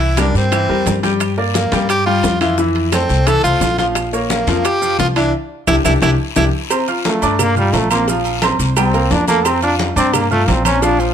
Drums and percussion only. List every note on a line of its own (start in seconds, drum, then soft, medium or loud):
0.00 high bongo soft
0.00 high conga soft
0.00 high timbale medium
0.17 high bongo medium
0.17 high conga medium
0.17 high timbale medium
0.17 low timbale medium
0.17 short guiro medium
0.17 claves medium
0.17 maracas medium
0.35 high bongo soft
0.35 high conga soft
0.35 short guiro medium
0.35 maracas soft
0.52 high bongo medium
0.52 high conga soft
0.52 high timbale loud
0.52 long guiro medium
0.52 claves medium
0.52 maracas medium
0.69 high conga soft
0.86 high bongo soft
0.86 low bongo medium
0.86 high conga medium
0.86 high timbale medium
0.86 low timbale medium
0.86 short guiro medium
0.86 maracas medium
1.03 high bongo soft
1.03 high conga medium
1.03 high timbale medium
1.03 short guiro medium
1.03 maracas soft
1.20 high bongo medium
1.20 high conga soft
1.20 high timbale medium
1.20 long guiro medium
1.20 claves medium
1.20 maracas medium
1.38 high bongo soft
1.38 high conga soft
1.54 high bongo medium
1.54 high conga medium
1.54 high timbale medium
1.54 low timbale medium
1.54 short guiro medium
1.54 maracas medium
1.72 high bongo soft
1.72 high conga medium
1.72 high timbale medium
1.72 short guiro medium
1.72 maracas soft
1.89 high bongo medium
1.89 high conga soft
1.89 high timbale medium
1.89 long guiro medium
1.89 claves medium
1.89 maracas medium
2.07 high conga soft
2.23 high bongo soft
2.23 low bongo medium
2.23 high conga medium
2.23 high timbale medium
2.23 low timbale medium
2.23 short guiro medium
2.23 maracas medium
2.41 high bongo soft
2.41 high conga medium
2.41 high timbale loud
2.41 short guiro medium
2.41 claves medium
2.41 maracas soft
2.57 high bongo medium
2.57 high conga soft
2.57 long guiro medium
2.57 maracas medium
2.75 high bongo soft
2.75 high conga soft
2.75 high timbale medium
2.92 high bongo medium
2.92 high conga medium
2.92 high timbale loud
2.92 low timbale medium
2.92 short guiro medium
2.92 claves medium
2.92 maracas medium
3.09 high bongo soft
3.09 high conga soft
3.09 short guiro medium
3.09 maracas soft
3.27 high bongo medium
3.27 high conga soft
3.27 high timbale medium
3.27 long guiro medium
3.27 claves medium
3.27 maracas medium
3.44 high conga soft
3.44 maracas medium
3.61 high bongo soft
3.61 low bongo medium
3.61 high conga medium
3.61 high timbale medium
3.61 low timbale medium
3.61 short guiro medium
3.61 maracas medium
3.78 high bongo soft
3.78 high conga medium
3.78 high timbale medium
3.78 short guiro medium
3.78 maracas soft
3.95 high bongo medium
3.95 high conga soft
3.95 high timbale medium
3.95 long guiro medium
3.95 claves medium
3.95 maracas medium
4.13 high bongo soft
4.13 high conga soft
4.13 maracas medium
4.30 high bongo medium
4.30 high conga loud
4.30 high timbale medium
4.30 low timbale medium
4.30 short guiro medium
4.30 maracas medium
4.47 high bongo soft
4.47 high conga medium
4.47 high timbale medium
4.47 short guiro medium
4.47 maracas soft
4.64 high bongo medium
4.64 high conga soft
4.64 high timbale medium
4.64 long guiro medium
4.64 claves medium
4.64 maracas medium
4.82 high conga soft
4.82 maracas medium
4.99 high bongo soft
4.99 low bongo medium
4.99 high conga medium
4.99 high timbale medium
4.99 low timbale medium
4.99 short guiro medium
4.99 maracas medium
5.16 high bongo soft
5.16 high timbale medium
5.16 short guiro medium
5.16 claves medium
5.16 maracas soft
5.67 low bongo medium
5.67 high conga loud
5.67 high timbale medium
5.67 long guiro medium
5.67 claves loud
5.67 maracas medium
5.84 low bongo medium
5.84 high conga medium
5.84 high timbale loud
5.84 long guiro loud
5.84 claves loud
5.84 maracas loud
6.02 low bongo loud
6.02 high conga medium
6.02 high timbale loud
6.02 long guiro medium
6.02 claves loud
6.02 maracas loud
6.36 low bongo loud
6.36 high conga loud
6.36 high timbale loud
6.36 long guiro loud
6.36 claves medium
6.36 maracas medium
6.70 cowbell loud
6.70 high conga soft
6.70 low agogo loud
6.70 long guiro medium
6.70 claves medium
6.70 maracas medium
6.88 cowbell medium
6.88 high conga soft
6.88 maracas soft
7.05 cowbell medium
7.05 high conga loud
7.05 low timbale medium
7.05 low agogo medium
7.05 short guiro medium
7.05 maracas soft
7.22 low agogo medium
7.22 short guiro medium
7.22 maracas medium
7.39 cowbell loud
7.39 high conga soft
7.39 low conga medium
7.39 low agogo loud
7.39 long guiro medium
7.39 claves medium
7.39 maracas medium
7.56 high conga soft
7.56 low conga medium
7.56 maracas soft
7.73 cowbell medium
7.73 high conga medium
7.73 low timbale medium
7.73 low agogo medium
7.73 short guiro medium
7.73 maracas soft
7.91 high conga medium
7.91 low agogo loud
7.91 short guiro medium
7.91 claves medium
7.91 maracas medium
8.08 cowbell loud
8.08 high conga soft
8.08 long guiro medium
8.08 maracas medium
8.25 high conga soft
8.25 low agogo medium
8.25 maracas soft
8.42 cowbell medium
8.42 high conga loud
8.42 low timbale medium
8.42 low agogo loud
8.42 short guiro medium
8.42 claves medium
8.42 maracas soft
8.60 cowbell medium
8.60 high conga soft
8.60 short guiro medium
8.60 maracas medium
8.77 cowbell loud
8.77 high conga soft
8.77 low agogo loud
8.77 long guiro medium
8.77 claves medium
8.77 maracas medium
8.93 high conga soft
8.93 low agogo medium
8.93 maracas soft
9.11 cowbell medium
9.11 high conga medium
9.11 low timbale medium
9.11 short guiro medium
9.11 maracas soft
9.27 cowbell medium
9.27 high conga medium
9.27 low agogo medium
9.27 short guiro medium
9.27 maracas medium
9.45 cowbell loud
9.45 high conga soft
9.45 low agogo loud
9.45 long guiro medium
9.45 claves medium
9.45 maracas medium
9.62 cowbell medium
9.62 high conga soft
9.62 maracas soft
9.79 cowbell medium
9.79 high conga medium
9.79 low timbale medium
9.79 low agogo medium
9.79 short guiro medium
9.79 maracas soft
9.96 low agogo medium
9.96 short guiro medium
9.96 maracas medium
10.13 cowbell loud
10.13 high conga soft
10.13 low conga medium
10.13 low agogo loud
10.13 long guiro medium
10.13 claves medium
10.13 maracas medium
10.31 high conga soft
10.31 low conga medium
10.31 maracas soft
10.48 cowbell medium
10.48 high conga medium
10.48 low timbale medium
10.48 low agogo medium
10.48 short guiro medium
10.48 maracas soft
10.65 high conga medium
10.65 low agogo loud
10.65 short guiro medium
10.65 claves medium
10.65 maracas medium
10.82 cowbell loud
10.82 high conga soft
10.82 long guiro medium
10.82 maracas medium
10.99 high conga soft
10.99 low agogo medium
10.99 maracas soft